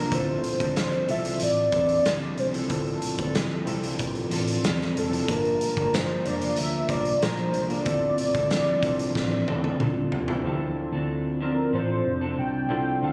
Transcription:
Already playing: clean electric guitar F3 A#3 D4 A#4, tine electric piano A#3 D4 F4 A4, soft synth lead A#4
0.10 fingered electric bass D2, clean electric guitar D3 F3 C4 D4 A4, tine electric piano C4 E4 F4 A4, soft synth lead C5, kick, closed hi-hat
0.44 closed hi-hat
0.60 fingered electric bass D2, clean electric guitar C4 D4 A4, kick, closed hi-hat
0.76 snare, closed hi-hat
0.92 closed hi-hat
1.08 fingered electric bass C2, clean electric guitar F3 C4 D4 A4, tine electric piano C4 E4 F4 A4, soft synth lead E5, closed hi-hat
1.25 closed hi-hat
1.40 fingered electric bass A1, soft synth lead D5, closed hi-hat
1.72 fingered electric bass E2, clean electric guitar C4 D4 A4, kick, closed hi-hat
1.89 closed hi-hat
2.04 fingered electric bass D2, clean electric guitar F3 C4 D4 A4, snare, closed hi-hat
2.38 fingered electric bass C2, soft synth lead C5, closed hi-hat
2.52 tine electric piano C4 E4 F4 A4, clean electric guitar C4 D4 A4, closed hi-hat
2.69 fingered electric bass D2, clean electric guitar D3 F3 C4 D4 A4, tine electric piano C4 E4 F4 A4, soft synth lead A4, kick, closed hi-hat
2.86 closed hi-hat
3.02 closed hi-hat
3.18 fingered electric bass D2, clean electric guitar C4 D4 A4, kick, closed hi-hat
3.35 snare, closed hi-hat
3.65 fingered electric bass C2, clean electric guitar F3 C4 D4 A4, tine electric piano C4 E4 F4 A4, closed hi-hat
3.83 closed hi-hat
3.99 kick, closed hi-hat
4.15 closed hi-hat
4.30 fingered electric bass A1, clean electric guitar F3 C4 D4 A4, closed hi-hat
4.47 closed hi-hat
4.63 fingered electric bass E2, clean electric guitar C4 D4 A4, snare, closed hi-hat
4.81 snare
4.96 fingered electric bass F1, soft synth lead A4, closed hi-hat
5.10 tine electric piano C4 E4 F4 A4, clean electric guitar C4 D4 A4, closed hi-hat
5.27 fingered electric bass G1, clean electric guitar G2 D3 F3 A#3 D4 A#4, tine electric piano A#3 D4 F4 A5, soft synth lead A#4, kick, closed hi-hat
5.45 closed hi-hat
5.61 closed hi-hat
5.77 fingered electric bass G1, clean electric guitar F3 A#3 D4 A#4, kick, closed hi-hat
5.94 soft synth lead C5, snare, closed hi-hat
6.23 fingered electric bass F1, clean electric guitar F3 A#3 D4 A#4, tine electric piano A#3 D4 F4 C5, soft synth lead D5, closed hi-hat
6.41 closed hi-hat
6.56 fingered electric bass D2, soft synth lead E5, closed hi-hat
6.89 fingered electric bass C2, clean electric guitar F3 A#3 D4 A#4, soft synth lead D5, kick, closed hi-hat
7.05 closed hi-hat
7.20 fingered electric bass A#1, clean electric guitar F3 A#3 D4 A#4, soft synth lead C5, snare, closed hi-hat
7.38 closed hi-hat
7.54 fingered electric bass C2, closed hi-hat
7.69 clean electric guitar F3 A#3 D4 A#4, tine electric piano A#3 D4 F4 A4, soft synth lead D5, closed hi-hat
7.84 fingered electric bass D2, clean electric guitar D3 F3 C4 D4 A4, tine electric piano C4 E4 F4 A4, kick, closed hi-hat
8.18 closed hi-hat
8.34 fingered electric bass D2, clean electric guitar C4 D4 A4, kick, closed hi-hat
8.50 snare, closed hi-hat
8.81 fingered electric bass C2, clean electric guitar F3 C4 D4 A4, tine electric piano C4 E4 F4 A4, kick, closed hi-hat
8.99 closed hi-hat
9.15 fingered electric bass A1, kick, snare
9.47 fingered electric bass E2, clean electric guitar C4 D4 A4, high tom
9.64 high tom
9.79 fingered electric bass D2, clean electric guitar F3 C4 D4 A4, mid tom
10.12 fingered electric bass C2, floor tom
10.27 tine electric piano C4 E4 F4 A4, clean electric guitar C4 D4 A4, floor tom
10.43 fingered electric bass D2, clean electric guitar F3 C4 D4 A4, tine electric piano C4 E4 F4 G4
10.52 tine electric piano A4
10.92 fingered electric bass D2, clean electric guitar C4 D4 A4
11.41 clean electric guitar F3 C4 D4, soft synth lead A#4
11.73 fingered electric bass A1, clean electric guitar F3 C4 D4 A4, soft synth lead C5
12.05 fingered electric bass F1
12.21 clean electric guitar C4 D4 A4
12.38 fingered electric bass C2, soft synth lead G5
12.69 fingered electric bass C2, clean electric guitar D3 F3 C4 D4 A4, tine electric piano C4 E4 F4 A4
13.01 fingered electric bass D2, clean electric guitar F3 C4 D4 A4, tine electric piano C4 D4 F4 A4, soft synth lead F5

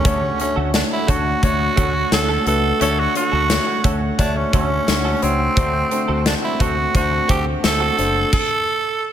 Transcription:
Already playing: analog synth pad A3, tenor saxophone C#4
0.04 fingered electric bass D2, grand piano D3 A3 D4 F#4 C#5, clean electric guitar A3 C#4 F#4 A4, analog synth pad F#5, kick, closed hi-hat
0.22 muted clean electric guitar stroke
0.39 grand piano A3 D4 F#4 C#5, tenor saxophone C#4, muted clean electric guitar stroke, closed hi-hat
0.56 fingered electric bass D2, clean electric guitar A3 C#4 F#4 A4
0.74 grand piano A3 D4 F#4 C#5, tenor saxophone D4, snare, closed hi-hat
0.91 tenor saxophone E4, muted clean electric guitar stroke
1.07 fingered electric bass D2, clean electric guitar A3 C#4 F#4 A4, grand piano A3 D4 F#4 C#5, tenor saxophone F#4, kick, closed hi-hat
1.25 muted clean electric guitar stroke
1.43 fingered electric bass D2, grand piano A3 D4 F#4 C#5, tenor saxophone F#4, kick, closed hi-hat
1.60 muted clean electric guitar stroke
1.76 fingered electric bass D2, clean electric guitar A3 C#4 F#4 A4, grand piano A3 D4 F#4 C#5, kick, closed hi-hat
1.94 muted clean electric guitar stroke
2.12 fingered electric bass D2, grand piano A3 D4 F#4 C#5, tenor saxophone A4, muted clean electric guitar stroke, snare, closed hi-hat
2.29 clean electric guitar A3 C#4 F#4 A4
2.46 fingered electric bass C#2, grand piano A3 D4 F#4 B4, tenor saxophone A4, muted clean electric guitar stroke, closed hi-hat
2.63 muted clean electric guitar stroke
2.80 fingered electric bass D2, grand piano D3 A3 D4 F#4 C#5, clean electric guitar A3 C#4 F#4 A4, tenor saxophone A4, closed hi-hat
2.98 tenor saxophone F#4, muted clean electric guitar stroke
3.15 grand piano A3 D4 F#4 C#5, tenor saxophone F#4, muted clean electric guitar stroke, closed hi-hat
3.32 fingered electric bass D2, clean electric guitar A3 C#4 F#4 A4
3.50 grand piano A3 D4 F#4 C#5, snare, closed hi-hat
3.67 muted clean electric guitar stroke
3.84 fingered electric bass D2, grand piano A3 D4 F#4 C#5, clean electric guitar A3 C#4 F#4 A4, kick, closed hi-hat
4.01 muted clean electric guitar stroke
4.18 fingered electric bass D2, grand piano A3 D4 F#4 C#5, tenor saxophone D4, muted clean electric guitar stroke, kick, closed hi-hat
4.36 tenor saxophone C#4, muted clean electric guitar stroke
4.53 fingered electric bass D2, clean electric guitar A3 C#4 F#4 A4, grand piano A3 D4 F#4 C#5, tenor saxophone C#4, kick, closed hi-hat
4.70 muted clean electric guitar stroke
4.87 fingered electric bass D2, grand piano A3 D4 F#4 C#5, muted clean electric guitar stroke, snare, closed hi-hat
5.05 clean electric guitar A3 C#4 F#4 A4
5.22 fingered electric bass C#2, grand piano A3 D4 F#4 C#5, tenor saxophone C4, muted clean electric guitar stroke, closed hi-hat
5.39 muted clean electric guitar stroke
5.56 fingered electric bass D2, grand piano D3 A3 D4 F#4 C5, clean electric guitar A3 C4 F#4 A4, analog synth pad C4, kick, closed hi-hat
5.74 muted clean electric guitar stroke
5.91 grand piano A3 D4 F#4 C5, muted clean electric guitar stroke, closed hi-hat
6.08 fingered electric bass D2, clean electric guitar A3 C4 F#4 A4
6.25 grand piano A3 D4 F#4 C5, tenor saxophone D4, snare, closed hi-hat
6.42 tenor saxophone E4, muted clean electric guitar stroke
6.59 fingered electric bass D2, grand piano A3 D4 F#4 C5, clean electric guitar A3 C4 F#4 A4, tenor saxophone F#4, kick, closed hi-hat
6.77 muted clean electric guitar stroke
6.94 fingered electric bass D2, grand piano A3 D4 F#4 C5, tenor saxophone F#4, kick, closed hi-hat
7.11 muted clean electric guitar stroke
7.28 fingered electric bass D2, grand piano A3 D4 F#4 C5, clean electric guitar A3 C4 F#4 A4, tenor saxophone G4, kick, closed hi-hat
7.46 muted clean electric guitar stroke
7.63 fingered electric bass D2, grand piano A3 D4 F#4 C5, tenor saxophone A4, muted clean electric guitar stroke, snare, closed hi-hat
7.80 clean electric guitar A3 C4 F#4 A4
7.98 fingered electric bass F#1, grand piano A3 D4 F#4 C5, closed hi-hat
8.15 muted clean electric guitar stroke
8.33 tenor saxophone A4, kick, crash

